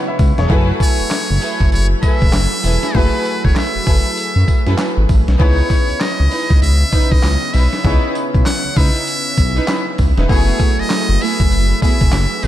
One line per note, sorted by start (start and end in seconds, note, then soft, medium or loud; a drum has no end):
0.00 0.46 C#3 medium
0.00 0.46 G#3 medium
0.00 0.46 B3 medium
0.00 0.46 C#4 medium
0.00 0.46 E4 medium
0.00 5.36 E4 medium
0.00 0.52 A#4 medium
0.00 0.09 B4 medium
0.00 0.39 C#5 medium
0.00 0.46 D#5 medium
0.00 0.51 F#5 medium
0.08 0.37 B4 medium
0.08 0.37 E5 medium
0.19 0.33 C#2 loud
0.19 kick loud
0.19 open hi-hat medium
0.19 tambourine medium
0.38 0.47 E1 loud
0.38 0.50 G#4 medium
0.38 0.68 C#5 medium
0.38 snare medium
0.38 closed hi-hat medium
0.49 0.72 F#1 loud
0.49 5.36 F#3 medium
0.49 2.91 A3 medium
0.49 5.36 A3 medium
0.49 0.78 E4 loud
0.49 2.91 E4 medium
0.49 2.91 F#4 medium
0.49 0.79 G#4 loud
0.49 5.36 G#4 medium
0.49 2.92 G#4 medium
0.49 0.79 A4 medium
0.49 0.79 B4 loud
0.49 5.36 B4 medium
0.49 2.92 B4 medium
0.49 kick loud
0.49 closed hi-hat medium
0.80 1.69 C#5 loud
0.80 kick medium
0.80 closed hi-hat medium
0.80 tambourine medium
1.00 1.05 F#1 medium
1.00 closed hi-hat medium
1.11 snare loud
1.11 clap medium
1.11 closed hi-hat medium
1.11 tambourine loud
1.30 1.39 F#1 loud
1.41 1.63 E4 medium
1.41 1.63 G#4 medium
1.41 1.63 A4 medium
1.41 1.64 B4 medium
1.41 open hi-hat medium
1.41 tambourine medium
1.61 1.69 F#1 medium
1.61 kick medium
1.61 closed hi-hat medium
1.72 1.95 F#1 medium
1.72 1.87 C#5 loud
1.72 closed hi-hat medium
1.72 tambourine medium
2.02 2.24 E4 medium
2.02 2.25 G#4 medium
2.02 2.25 A4 medium
2.02 2.25 B4 medium
2.02 2.97 E5 loud
2.02 kick medium
2.02 closed hi-hat medium
2.02 tambourine medium
2.22 2.30 E1 loud
2.22 kick loud
2.22 closed hi-hat medium
2.33 2.47 F#1 loud
2.33 snare loud
2.33 clap loud
2.33 closed hi-hat medium
2.33 tambourine loud
2.64 2.78 E1 loud
2.64 2.86 E4 medium
2.64 2.86 G#4 medium
2.64 2.86 A4 medium
2.64 2.86 B4 medium
2.64 open hi-hat medium
2.64 tambourine medium
2.83 snare medium
2.83 closed hi-hat medium
2.94 3.08 F#1 loud
2.94 5.35 A3 medium
2.94 3.23 E4 loud
2.94 5.36 E4 medium
2.94 5.36 F#4 medium
2.94 3.23 G#4 medium
2.94 5.36 G#4 medium
2.94 3.23 A4 medium
2.94 3.24 B4 loud
2.94 3.46 B4 loud
2.94 5.37 B4 medium
2.94 kick loud
2.94 closed hi-hat medium
3.25 closed hi-hat medium
3.25 tambourine medium
3.45 3.53 E1 medium
3.45 3.58 C#5 medium
3.45 kick loud
3.45 closed hi-hat medium
3.56 4.79 E5 loud
3.56 snare loud
3.56 clap medium
3.56 closed hi-hat medium
3.56 tambourine loud
3.75 3.80 F#1 medium
3.86 4.00 F#1 medium
3.86 4.08 E4 medium
3.86 4.08 G#4 medium
3.86 4.08 A4 medium
3.86 4.09 B4 medium
3.86 kick loud
3.86 open hi-hat medium
3.86 tambourine medium
4.06 closed hi-hat soft
4.17 closed hi-hat medium
4.17 tambourine medium
4.36 4.44 F#2 loud
4.48 kick medium
4.48 closed hi-hat medium
4.48 tambourine medium
4.67 4.75 F#2 loud
4.67 4.83 E4 medium
4.67 4.83 G#4 medium
4.67 4.83 A4 medium
4.67 4.83 B4 medium
4.67 snare medium
4.67 closed hi-hat medium
4.78 snare loud
4.78 clap loud
4.78 closed hi-hat medium
4.78 tambourine medium
4.97 5.06 G#1 medium
5.09 5.23 A1 loud
5.09 kick medium
5.09 open hi-hat medium
5.09 tambourine medium
5.28 5.36 B1 loud
5.28 snare medium
5.28 closed hi-hat medium
5.39 5.62 C#2 loud
5.39 10.26 C#3 medium
5.39 7.80 B3 medium
5.39 10.26 B3 medium
5.39 7.81 C#4 medium
5.39 10.26 C#4 medium
5.39 5.68 D#4 loud
5.39 12.47 E4 medium
5.39 5.69 E4 loud
5.39 7.81 E4 medium
5.39 7.81 G#4 medium
5.39 5.69 B4 loud
5.39 6.03 C#5 loud
5.39 7.81 C#5 medium
5.39 kick loud
5.39 closed hi-hat medium
5.70 kick medium
5.70 closed hi-hat medium
5.70 tambourine medium
5.89 5.94 C#2 medium
5.89 closed hi-hat medium
6.01 6.62 D#5 loud
6.01 snare loud
6.01 clap medium
6.01 closed hi-hat loud
6.01 tambourine loud
6.20 6.28 C#2 loud
6.31 6.53 D#4 medium
6.31 6.53 E4 medium
6.31 6.53 B4 medium
6.31 open hi-hat medium
6.31 tambourine medium
6.50 6.59 C#2 loud
6.50 kick medium
6.50 closed hi-hat medium
6.62 6.84 C#2 medium
6.62 7.13 E5 loud
6.62 closed hi-hat medium
6.62 tambourine medium
6.92 7.14 D#4 medium
6.92 7.15 E4 medium
6.92 7.15 B4 medium
6.92 kick medium
6.92 closed hi-hat medium
6.92 tambourine medium
7.11 7.20 B1 loud
7.11 7.55 D#5 loud
7.11 kick loud
7.11 closed hi-hat medium
7.23 7.37 C#2 loud
7.23 snare loud
7.23 clap loud
7.23 closed hi-hat medium
7.23 tambourine loud
7.54 7.68 B1 loud
7.54 7.76 D#4 medium
7.54 7.76 E4 medium
7.54 7.76 B4 medium
7.54 8.15 E5 loud
7.54 open hi-hat medium
7.54 tambourine medium
7.73 snare medium
7.73 closed hi-hat medium
7.84 7.98 C#2 loud
7.84 10.25 B3 medium
7.84 10.25 C#4 medium
7.84 8.13 D#4 loud
7.84 8.13 E4 medium
7.84 10.26 E4 medium
7.84 10.26 G#4 medium
7.84 8.14 B4 loud
7.84 10.26 C#5 medium
7.84 kick loud
7.84 closed hi-hat medium
8.15 closed hi-hat medium
8.15 tambourine medium
8.35 8.43 B1 medium
8.35 kick loud
8.35 closed hi-hat medium
8.46 8.79 F#5 loud
8.46 snare loud
8.46 clap medium
8.46 closed hi-hat medium
8.46 tambourine loud
8.65 8.69 C#2 medium
8.76 8.90 C#2 loud
8.76 8.98 D#4 medium
8.76 8.98 E4 medium
8.76 8.98 B4 medium
8.76 9.99 E5 loud
8.76 kick loud
8.76 open hi-hat medium
8.76 tambourine medium
8.96 closed hi-hat soft
9.07 closed hi-hat medium
9.07 tambourine medium
9.38 9.60 B1 medium
9.38 kick medium
9.38 closed hi-hat medium
9.38 tambourine medium
9.56 9.73 D#4 medium
9.56 9.73 E4 medium
9.56 9.73 B4 medium
9.56 closed hi-hat medium
9.68 snare loud
9.68 clap loud
9.68 closed hi-hat medium
9.68 tambourine loud
9.98 10.12 C#2 medium
9.98 kick medium
9.98 open hi-hat medium
9.98 tambourine medium
10.17 10.26 E1 loud
10.17 10.34 D#4 medium
10.17 10.28 E4 medium
10.17 10.34 B4 medium
10.17 snare medium
10.17 closed hi-hat medium
10.29 10.52 F#1 loud
10.29 12.47 F#3 medium
10.29 12.47 A3 medium
10.29 10.58 A3 loud
10.29 12.47 A3 medium
10.29 10.58 B3 medium
10.29 12.47 E4 medium
10.29 10.58 E4 loud
10.29 12.47 F#4 medium
10.29 12.47 G#4 medium
10.29 10.58 G#4 loud
10.29 12.47 G#4 medium
10.29 12.47 B4 medium
10.29 10.81 C#5 loud
10.29 kick loud
10.29 closed hi-hat medium
10.60 kick medium
10.60 closed hi-hat medium
10.60 tambourine medium
10.79 10.84 F#1 medium
10.79 11.23 D#5 loud
10.79 closed hi-hat medium
10.90 snare loud
10.90 clap loud
10.90 closed hi-hat loud
10.90 tambourine loud
11.09 11.18 F#1 loud
11.21 11.43 A3 medium
11.21 11.43 B3 medium
11.21 11.43 E4 medium
11.21 11.43 G#4 medium
11.21 11.83 E5 loud
11.21 open hi-hat medium
11.21 tambourine medium
11.40 11.48 F#1 loud
11.40 kick medium
11.40 closed hi-hat medium
11.51 11.74 F#1 medium
11.51 closed hi-hat medium
11.51 tambourine medium
11.82 12.04 A3 medium
11.82 12.04 B3 medium
11.82 12.04 E4 medium
11.82 12.04 G#4 medium
11.82 12.46 E5 loud
11.82 kick medium
11.82 closed hi-hat medium
11.82 tambourine medium
12.01 12.10 E1 loud
12.01 kick medium
12.01 closed hi-hat medium
12.12 12.26 F#1 loud
12.12 snare loud
12.12 clap loud
12.12 closed hi-hat medium
12.12 tambourine medium
12.43 12.47 A1 loud
12.43 12.47 A3 medium
12.43 12.47 B3 medium
12.43 12.47 E4 medium
12.43 12.47 G#4 medium
12.43 open hi-hat medium
12.43 tambourine medium